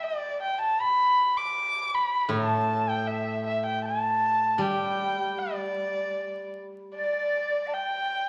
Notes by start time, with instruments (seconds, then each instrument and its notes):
0.04 erhu D5
0.43 erhu G5
0.61 erhu A5
0.81 erhu B5
1.37 erhu D6
1.95 erhu B5
2.29 guzheng A2, erhu A5
2.89 erhu G5
3.07 erhu E5
3.47 erhu E5
3.66 erhu G5
3.85 erhu A5
4.58 guzheng G3, erhu G5
5.38 erhu D5
6.96 erhu D5, dizi D5
7.67 dizi A5
7.73 erhu G5, dizi G5